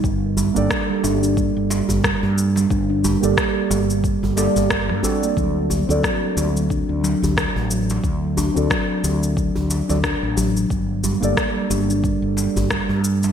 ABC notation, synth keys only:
X:1
M:4/4
L:1/16
Q:"Swing 16ths" 1/4=90
K:Gm
V:1 name="Synth keys"
z3 [B,DGAd]12- [B,DGAd]- | [B,DGAd]3 [B,DGAd]6- [B,DGAd] [B,DGAd]4 [CD^FAd]2- | [CD^FAd]2 z [CDFAd]12- [CDFAd]- | [CD^FAd]3 [CDFAd]8 [CDFAd] z4 |
z3 [B,DGAd]12- [B,DGAd] |]